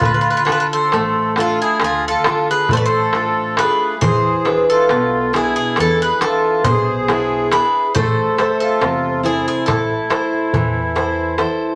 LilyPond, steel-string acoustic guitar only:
\new Staff \with { instrumentName = "Steel-string acoustic guitar" } { \time 9/8 \key a \minor \tempo 4. = 46 d8 <d' f' a'>8 a8 <d' f' a'>8 d8 <d' f' a'>8 a8 <d' f'>8 <a d' f'>8 | e8 <d' b' e''>8 b,8 <d' e' gis'>8 e8 <d' e''>8 b,8 <d' e' gis'>8 <d' e' gis'>8 | a8 <a' c'' e''>8 c8 <e' a' c''>8 a8 <e' a' c''>8 e8 <e' a' c''>8 <e' a' c''>8 | }